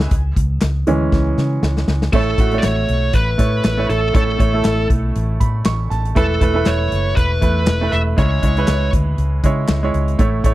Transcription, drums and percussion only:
0.00 snare loud
0.11 kick loud
0.11 closed hi-hat medium
0.36 kick medium
0.36 closed hi-hat medium
0.61 snare medium
0.61 clap medium
0.61 closed hi-hat medium
0.87 closed hi-hat medium
1.12 kick medium
1.12 snare soft
1.38 snare medium
1.63 snare medium
1.77 snare medium
1.88 snare medium
2.02 snare medium
2.13 kick loud
2.13 crash medium
2.38 kick medium
2.38 closed hi-hat medium
2.52 closed hi-hat soft
2.63 snare medium
2.63 clap medium
2.63 closed hi-hat medium
2.89 closed hi-hat medium
3.13 kick medium
3.13 closed hi-hat medium
3.39 kick medium
3.39 closed hi-hat medium
3.64 snare loud
3.64 clap medium
3.64 closed hi-hat medium
3.90 closed hi-hat medium
4.15 kick loud
4.15 closed hi-hat medium
4.40 kick medium
4.40 closed hi-hat medium
4.64 snare medium
4.64 clap medium
4.64 closed hi-hat medium
4.90 kick medium
4.90 closed hi-hat medium
5.16 closed hi-hat medium
5.41 kick medium
5.41 closed hi-hat medium
5.65 snare loud
5.65 clap medium
5.65 closed hi-hat medium
5.91 snare soft
5.91 closed hi-hat medium
6.05 closed hi-hat medium
6.16 kick medium
6.16 closed hi-hat medium
6.41 kick medium
6.41 closed hi-hat medium
6.66 snare medium
6.66 clap medium
6.66 closed hi-hat medium
6.92 closed hi-hat medium
7.17 kick medium
7.17 closed hi-hat medium
7.42 kick medium
7.42 closed hi-hat medium
7.67 snare loud
7.67 clap medium
7.67 closed hi-hat medium
7.92 closed hi-hat medium
8.18 kick loud
8.18 closed hi-hat medium
8.43 kick medium
8.43 closed hi-hat medium
8.57 closed hi-hat soft
8.67 snare loud
8.67 clap medium
8.67 closed hi-hat medium
8.93 kick medium
8.93 closed hi-hat medium
9.18 closed hi-hat medium
9.44 kick medium
9.44 closed hi-hat medium
9.68 snare loud
9.68 clap medium
9.68 closed hi-hat medium
9.94 closed hi-hat medium
10.08 closed hi-hat soft
10.19 kick loud
10.19 closed hi-hat medium
10.44 kick medium
10.44 closed hi-hat medium

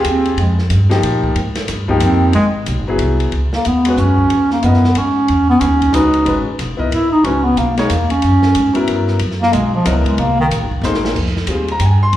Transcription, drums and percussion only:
0.04 hi-hat pedal medium
0.04 ride medium
0.25 ride soft
0.38 ride medium
0.59 snare soft
0.70 hi-hat pedal medium
0.70 ride medium
0.91 snare medium
0.91 ride soft
1.03 ride medium
1.24 kick medium
1.36 ride medium
1.55 snare medium
1.55 ride medium
1.68 snare soft
1.68 hi-hat pedal medium
1.68 ride medium
1.89 kick medium
2.00 hi-hat pedal medium
2.00 ride medium
2.33 ride medium
2.66 hi-hat pedal medium
2.66 ride medium
2.99 ride medium
3.20 ride soft
3.32 ride medium
3.53 snare medium
3.65 hi-hat pedal soft
3.65 ride medium
3.85 ride medium
3.97 hi-hat pedal medium
4.18 kick soft
4.30 ride medium
4.51 snare soft
4.63 hi-hat pedal medium
4.63 ride medium
4.74 snare soft
4.84 snare soft
4.95 ride medium
5.28 ride medium
5.61 hi-hat pedal medium
5.61 ride medium
5.82 kick soft
5.82 ride soft
5.94 hi-hat pedal medium
5.94 ride medium
6.14 ride soft
6.26 ride medium
6.59 snare soft
6.59 hi-hat pedal medium
6.59 ride medium
6.79 kick medium
6.92 ride medium
7.24 ride medium
7.57 hi-hat pedal medium
7.57 ride medium
7.77 snare soft
7.77 ride medium
7.90 hi-hat pedal medium
7.90 ride medium
8.10 ride medium
8.22 ride medium
8.42 snare medium
8.55 hi-hat pedal medium
8.55 ride medium
8.75 ride medium
8.88 ride medium
9.08 snare soft
9.19 ride medium
9.31 snare soft
9.43 snare soft
9.53 hi-hat pedal medium
9.53 ride medium
9.85 hi-hat pedal medium
9.85 ride medium
10.06 kick medium
10.06 ride soft
10.18 ride medium
10.51 hi-hat pedal medium
10.51 ride medium
10.71 kick medium
10.83 snare medium
10.83 hi-hat pedal medium
10.94 snare medium
11.05 snare medium
11.16 kick medium
11.16 crash medium
11.26 snare soft
11.37 snare soft
11.47 hi-hat pedal soft
11.47 ride medium
11.68 ride soft
11.80 hi-hat pedal medium
11.80 ride medium
12.13 ride medium

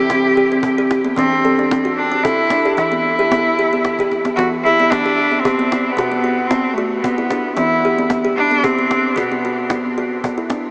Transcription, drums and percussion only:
0.10 cajon bass medium
0.10 cajon slap soft
0.37 cajon slap soft
0.51 cajon slap soft
0.63 cajon bass medium
0.91 cajon slap soft
1.05 cajon slap soft
1.17 cajon bass soft
1.71 cajon bass medium
1.71 cajon slap medium
1.98 cajon slap soft
2.25 cajon bass medium
2.50 cajon slap medium
2.78 cajon bass medium
2.78 cajon slap soft
3.05 cajon slap soft
3.32 cajon bass medium
3.32 cajon slap soft
3.58 cajon slap soft
3.85 cajon bass medium
3.85 cajon slap soft
3.99 cajon bass soft
4.11 cajon slap soft
4.25 cajon slap soft
4.39 cajon bass medium
4.39 cajon slap soft
4.66 cajon slap soft
4.79 cajon slap soft
4.92 cajon bass soft
4.92 cajon slap soft
5.05 cajon slap soft
5.32 cajon slap soft
5.45 cajon bass medium
5.59 cajon slap soft
5.72 cajon slap medium
5.98 cajon bass medium
5.98 cajon slap soft
6.24 cajon slap soft
6.38 cajon slap soft
6.51 cajon bass medium
6.51 cajon slap soft
6.64 cajon slap soft
6.92 cajon slap soft
7.04 cajon bass medium
7.18 cajon slap soft
7.30 cajon slap soft
7.57 cajon bass medium
7.57 cajon slap soft
7.84 cajon slap soft
7.98 cajon slap soft
8.10 cajon bass medium
8.10 cajon slap soft
8.24 cajon slap soft
8.51 cajon slap soft
8.64 cajon bass medium
8.78 cajon slap soft
8.91 cajon slap soft
9.17 cajon bass soft
9.57 cajon slap soft
9.70 cajon bass soft
9.70 cajon slap medium
9.98 cajon slap soft
10.24 cajon bass medium
10.50 cajon slap medium
10.63 cajon slap soft

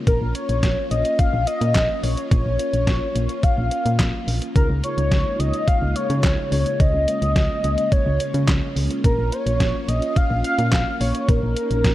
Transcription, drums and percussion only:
0.07 kick loud
0.07 closed hi-hat medium
0.35 closed hi-hat medium
0.49 closed hi-hat soft
0.63 kick loud
0.63 snare loud
0.63 closed hi-hat medium
0.91 closed hi-hat medium
1.05 closed hi-hat medium
1.19 kick loud
1.19 closed hi-hat medium
1.47 closed hi-hat medium
1.61 closed hi-hat medium
1.75 kick loud
1.75 snare loud
1.75 clap loud
1.75 closed hi-hat medium
2.03 open hi-hat medium
2.17 closed hi-hat medium
2.31 kick loud
2.31 closed hi-hat medium
2.59 closed hi-hat medium
2.74 closed hi-hat soft
2.87 kick loud
2.87 snare loud
2.87 closed hi-hat medium
3.16 closed hi-hat medium
3.29 closed hi-hat medium
3.43 kick loud
3.43 closed hi-hat medium
3.71 closed hi-hat medium
3.86 closed hi-hat medium
3.99 kick loud
3.99 snare loud
3.99 clap loud
3.99 closed hi-hat medium
4.28 open hi-hat medium
4.42 closed hi-hat medium
4.56 kick loud
4.56 closed hi-hat medium
4.84 closed hi-hat medium
4.98 closed hi-hat medium
5.12 kick loud
5.12 snare loud
5.12 closed hi-hat medium
5.40 closed hi-hat medium
5.54 closed hi-hat medium
5.68 kick loud
5.68 closed hi-hat medium
5.96 closed hi-hat medium
6.10 closed hi-hat medium
6.24 kick loud
6.24 snare loud
6.24 clap loud
6.24 closed hi-hat medium
6.52 open hi-hat medium
6.66 closed hi-hat medium
6.80 kick loud
6.80 closed hi-hat medium
7.08 closed hi-hat medium
7.22 closed hi-hat medium
7.36 kick loud
7.36 snare loud
7.36 closed hi-hat medium
7.64 closed hi-hat medium
7.78 closed hi-hat medium
7.92 kick loud
7.92 closed hi-hat medium
8.20 closed hi-hat medium
8.34 closed hi-hat medium
8.48 kick loud
8.48 snare loud
8.48 clap loud
8.48 closed hi-hat medium
8.76 open hi-hat medium
8.91 closed hi-hat medium
9.04 kick loud
9.04 closed hi-hat medium
9.32 closed hi-hat medium
9.47 closed hi-hat medium
9.60 kick loud
9.60 snare loud
9.60 closed hi-hat medium
9.89 closed hi-hat medium
10.02 closed hi-hat medium
10.16 kick loud
10.16 closed hi-hat medium
10.44 closed hi-hat medium
10.59 closed hi-hat medium
10.72 kick loud
10.72 snare loud
10.72 clap loud
10.72 closed hi-hat medium
11.01 open hi-hat medium
11.15 closed hi-hat medium
11.29 kick loud
11.29 closed hi-hat medium
11.57 closed hi-hat medium
11.71 closed hi-hat medium
11.84 kick loud
11.84 snare loud
11.84 closed hi-hat medium

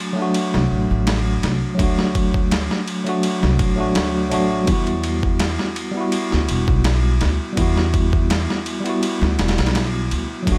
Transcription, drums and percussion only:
0.34 ride medium
0.54 snare soft
1.07 snare loud
1.07 ride medium
1.43 snare medium
1.43 ride medium
1.79 kick loud
1.79 ride medium
1.99 snare soft
2.15 kick medium
2.15 ride medium
2.34 kick medium
2.51 snare loud
2.51 ride medium
2.71 snare soft
2.88 ride medium
3.07 ride soft
3.23 ride medium
3.43 snare soft
3.59 kick loud
3.59 ride medium
3.95 snare loud
3.95 ride medium
4.32 ride medium
4.67 kick loud
4.67 ride medium
4.87 ride soft
5.04 ride medium
5.23 kick medium
5.39 snare loud
5.39 ride medium
5.59 snare soft
5.76 ride medium
6.12 ride medium
6.32 snare soft
6.49 ride medium
6.68 kick medium
6.84 snare loud
6.84 ride medium
7.21 snare medium
7.21 ride medium
7.57 kick loud
7.57 ride medium
7.77 snare soft
7.94 kick medium
7.94 ride medium
8.13 kick medium
8.30 snare loud
8.30 ride medium
8.50 snare soft
8.66 ride medium
8.86 ride soft
9.03 ride medium
9.23 snare soft
9.39 snare medium
9.39 ride medium
9.48 snare medium
9.48 ride medium
9.58 snare medium
9.58 ride medium
9.66 snare medium
9.66 ride medium
9.75 snare loud
9.75 ride medium
10.11 ride medium
10.47 kick loud
10.47 ride medium

